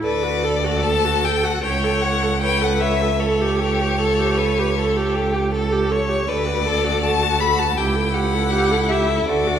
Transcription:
0.03 cello D2, viola A4, violin B4 D5
0.23 viola F#4
0.44 viola A4, violin A4
0.64 viola F#4
0.83 viola A4, violin A5
1.05 viola F#4
1.24 viola A4, violin G5
1.43 viola F#4, violin F#5
1.63 cello C#2, viola C#5, violin C#5 G5
1.84 viola A4
2.02 viola C#5, violin F#5
2.22 viola A4
2.41 violin B4 G5, viola C#5
2.62 viola A4, violin F#5
2.80 viola C#5, violin E5
3.01 viola A4
3.20 violin A4 C#5, viola A4
3.42 viola G4
3.60 violin G4, viola A4
3.80 viola G4
3.99 violin A4, viola A4
4.19 viola G4
4.38 viola A4, violin B4
4.59 viola G4
4.77 viola A4, violin A4
4.97 viola G4
5.14 violin G4, viola A4
5.33 viola G4
5.53 viola A4, violin A4
5.72 viola G4
5.90 viola A4, violin C#5
6.09 viola G4
6.27 cello D2, viola A4, violin B4 D5
6.46 viola F#4
6.66 viola A4, violin A4
6.84 viola F#4
7.03 violin F#4 A5, viola A4
7.23 viola F#4
7.40 viola A4, violin B5
7.59 viola F#4, violin A5
7.77 cello C#2, violin E4 G5, viola G4
7.96 viola A4
8.14 viola G4, violin F#5
8.34 viola A4
8.52 viola G4
8.71 viola A4
8.89 viola G4, violin E5
9.08 viola A4
9.26 cello D2, violin F#4 D5, viola A4
9.47 viola F#4

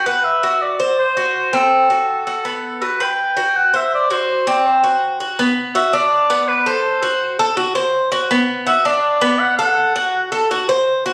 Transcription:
0.06 cuban tres B4, oboe F#5
0.24 oboe E5
0.43 cuban tres F#4
0.62 oboe D5
0.80 cuban tres C5
0.99 oboe C5
1.17 cuban tres F#4
1.53 cuban tres C4, oboe A4
1.90 cuban tres F#4
2.26 cuban tres F#4, oboe A4
2.45 cuban tres B3
2.82 cuban tres F#4, oboe B4
3.00 cuban tres B4, oboe G5
3.37 cuban tres F#4
3.56 oboe F#5
3.74 cuban tres C5, oboe E5
3.95 oboe D5
4.10 cuban tres F#4, oboe C5
4.47 cuban tres C4, oboe D5
4.67 oboe C5
4.84 cuban tres F#4
5.20 cuban tres F#4
5.39 cuban tres B3
5.75 cuban tres F#4, oboe E5
5.93 cuban tres D4, oboe D5
6.30 cuban tres B3
6.48 oboe B4
6.66 cuban tres A4, oboe C5
7.03 cuban tres F#4
7.39 cuban tres A4
7.57 cuban tres F#4
7.75 cuban tres C5
8.12 cuban tres F#4
8.31 cuban tres B3
8.67 cuban tres F#4, oboe E5
8.85 cuban tres D4, oboe D5
9.21 cuban tres B3
9.39 oboe F#5
9.57 cuban tres A4, oboe F#5
9.96 cuban tres F#4
10.32 cuban tres A4
10.51 cuban tres F#4
10.69 cuban tres C5
11.06 cuban tres F#4

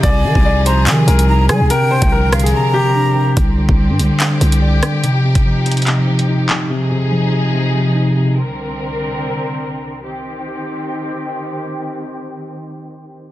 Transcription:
Already playing: string section D#4
0.03 808-style bass C2, tine electric piano C3, string section F3 G#4, grand piano D5, flute G#5, kick, closed hi-hat
0.24 tine electric piano C3, 808-style bass D#3
0.35 808-style bass C2, kick
0.45 tine electric piano F3, grand piano D5
0.66 tine electric piano C3, grand piano C5, flute A#5, closed hi-hat
0.87 tine electric piano C3, 808-style bass D#3, flute G#5, clap, closed hi-hat
1.07 808-style bass C2, tine electric piano C3, grand piano A#4, closed hi-hat
1.19 closed hi-hat
1.28 tine electric piano D#4, flute A#5
1.49 tine electric piano C3, 808-style bass G3, grand piano G#4, flute G#5, cross-stick, closed hi-hat
1.60 808-style bass C2
1.70 tine electric piano C3, string section D3 C4 A#4, grand piano A#4, flute G5, closed hi-hat
1.91 tine electric piano C3, grand piano C5
2.02 808-style bass C2, kick, closed hi-hat
2.12 tine electric piano F3, grand piano A#4
2.33 tine electric piano C3, flute F5, cross-stick, closed hi-hat
2.40 grand piano G#4, closed hi-hat
2.46 closed hi-hat
2.53 tine electric piano C3, flute A#5
2.74 tine electric piano C3, grand piano G4
2.95 tine electric piano D4
3.16 tine electric piano C3
3.37 808-style bass C2, string section D3 C4 G4, kick, closed hi-hat
3.58 tine electric piano D3
3.69 808-style bass C2, kick
3.79 tine electric piano G3
3.90 808-style bass G2
3.99 808-style bass C2, tine electric piano D3, closed hi-hat
4.20 tine electric piano D3, clap, closed hi-hat
4.41 808-style bass C2, tine electric piano D3, closed hi-hat
4.52 closed hi-hat
4.62 tine electric piano D5
4.83 tine electric piano D3, cross-stick, closed hi-hat
5.03 tine electric piano C3, string section C3 F3 D#4, closed hi-hat
5.24 tine electric piano C3
5.35 kick, closed hi-hat
5.45 tine electric piano F3
5.66 tine electric piano C3, closed hi-hat
5.71 closed hi-hat
5.77 closed hi-hat
5.82 closed hi-hat
5.87 tine electric piano C3, clap, closed hi-hat
6.08 tine electric piano C3
6.19 closed hi-hat
6.28 tine electric piano D#4
6.49 tine electric piano C3, clap, closed hi-hat
6.70 tine electric piano C3, string section F3 D#4 G#4
6.91 tine electric piano C3
7.12 tine electric piano F3
7.33 tine electric piano C3
7.53 tine electric piano C3
7.74 tine electric piano C3
7.95 tine electric piano D#4
8.16 tine electric piano C3
8.37 string section C2 D3 C4 A#4
10.03 string section D#3 C4 G4

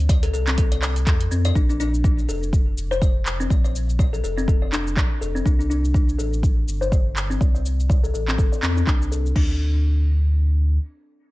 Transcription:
Already playing: sub bass D2
0.09 kalimba D5, kick, closed hi-hat, shaker
0.23 kalimba A4, closed hi-hat, shaker
0.33 sub bass C2, kalimba A4, shaker
0.47 kalimba C4, clap, closed hi-hat, shaker
0.58 kalimba A4, kick, closed hi-hat, shaker
0.72 kalimba D5, closed hi-hat
0.82 kalimba D5, clap, shaker
0.96 closed hi-hat, shaker
1.07 sub bass F2, kalimba A4, kick, clap, closed hi-hat, shaker
1.21 closed hi-hat
1.31 sub bass F2, kalimba C4, shaker
1.45 kalimba D5, closed hi-hat, shaker
1.55 sub bass A#1, kalimba D4, kick, shaker
1.69 kalimba D4, shaker
1.80 kalimba D4, shaker
1.94 shaker
2.04 kalimba D4, kick, shaker
2.19 shaker
2.28 sub bass F1, kalimba A4, shaker
2.43 shaker
2.53 kick, shaker
2.77 sub bass F1, shaker
2.91 kalimba C5, shaker
3.02 kalimba D5, kick, shaker
3.26 clap, shaker
3.40 kalimba C4, shaker
3.50 sub bass A#1, kalimba D5, kick, shaker
3.64 kalimba D5, shaker
3.76 shaker
3.89 shaker
3.99 kalimba D5, kick, shaker
4.13 kalimba A4, shaker
4.23 sub bass F1, kalimba A4, shaker
4.37 kalimba C4, shaker
4.48 kalimba A4, kick, shaker
4.62 kalimba D5
4.72 kalimba D4, clap, shaker
4.87 shaker
4.97 sub bass A#1, kalimba D5, kick, clap, shaker
5.21 sub bass F1, kalimba A4, shaker
5.35 kalimba C4, shaker
5.45 sub bass C2, kalimba D4, kick, shaker
5.59 kalimba D4, shaker
5.70 kalimba D4, shaker
5.85 shaker
5.94 kalimba D4, kick, shaker
6.09 shaker
6.18 sub bass A1, kalimba A4, shaker
6.33 shaker
6.43 kick, shaker
6.68 sub bass G1, shaker
6.81 kalimba C5, shaker
6.92 kalimba D5, kick, shaker
7.16 clap, shaker
7.30 kalimba C4, shaker
7.41 sub bass C2, kalimba D5, kick, shaker
7.54 kalimba D5, shaker
7.66 shaker
7.80 shaker
7.90 kalimba D5, kick, shaker
8.03 kalimba A4, shaker
8.14 sub bass A1, kalimba A4, shaker
8.28 kalimba C4, clap, shaker
8.38 sub bass G1, kalimba A4, kick, shaker
8.52 kalimba D5, shaker
8.62 sub bass E2, kalimba C4, clap, shaker
8.77 kalimba C4, shaker
8.87 sub bass C2, kalimba D4, kick, clap, shaker
9.02 shaker
9.12 kalimba A4, shaker
9.26 shaker
9.36 sub bass D2, kalimba D4, kick, crash

